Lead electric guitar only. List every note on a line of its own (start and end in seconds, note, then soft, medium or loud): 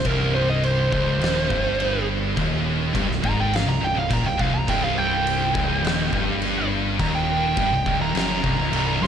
0.06 0.34 A#4 medium
0.35 0.48 C5 loud
0.50 0.63 D#5 loud
0.64 0.92 C5 medium
0.93 2.05 C5 loud
3.25 3.39 A#5 loud
3.40 3.55 G5 loud
3.55 3.68 F5 loud
3.69 3.82 A#5 loud
3.84 3.97 G5 medium
3.98 4.11 F5 medium
4.13 4.26 A#5 loud
4.26 4.41 G5 medium
4.41 4.54 F5 medium
4.54 4.68 A#5 loud
4.69 4.83 G5 loud
4.84 4.98 F5 medium
4.98 6.67 G5 loud
7.00 7.15 A#5 loud
7.15 7.99 G5 medium
8.02 8.29 A#5 loud
8.32 9.01 A#5 loud
9.03 9.07 C6 loud